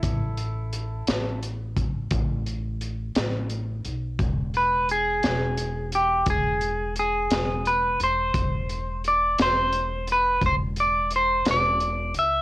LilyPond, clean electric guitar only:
\new Staff \with { instrumentName = "Clean electric guitar" } { \time 12/8 \key e \dorian \tempo 4. = 58 r1. | r8 b'8 gis'4. g'8 gis'4 gis'4 b'8 c''8~ | c''4 d''8 c''4 b'8 c''8 d''8 c''8 d''4 e''8 | }